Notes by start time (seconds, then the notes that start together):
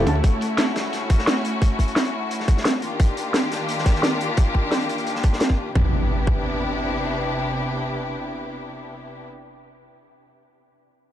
Already playing: A3 E4
0.05 D2 D3 C#4 F#4 A5, closed hi-hat, high bongo
0.15 closed hi-hat
0.24 kick, closed hi-hat
0.41 closed hi-hat
0.58 snare, closed hi-hat
0.76 snare, closed hi-hat
0.93 snare, closed hi-hat
1.10 kick, closed hi-hat
1.19 snare
1.27 snare, closed hi-hat
1.45 closed hi-hat
1.53 closed hi-hat
1.62 kick, closed hi-hat
1.79 kick, closed hi-hat
1.88 closed hi-hat
1.96 snare, closed hi-hat
2.05 closed hi-hat
2.14 closed hi-hat
2.31 closed hi-hat
2.40 snare
2.48 kick, closed hi-hat
2.57 snare
2.65 snare, closed hi-hat
2.82 D#3 A#3 D4 F4 G4, closed hi-hat
2.91 closed hi-hat
3.00 kick, closed hi-hat
3.17 closed hi-hat
3.34 snare, closed hi-hat
3.51 snare, closed hi-hat
3.69 closed hi-hat
3.78 snare
3.85 kick, snare, closed hi-hat
3.95 snare
4.03 snare, closed hi-hat
4.21 closed hi-hat
4.37 kick, closed hi-hat
4.55 kick
4.72 snare, closed hi-hat
4.81 closed hi-hat
4.89 closed hi-hat
4.98 closed hi-hat
5.07 closed hi-hat
5.15 snare
5.23 kick, closed hi-hat
5.33 snare
5.40 snare, closed hi-hat
5.50 kick
5.75 C3 B3 D4 E4 G4, kick, impact
6.27 kick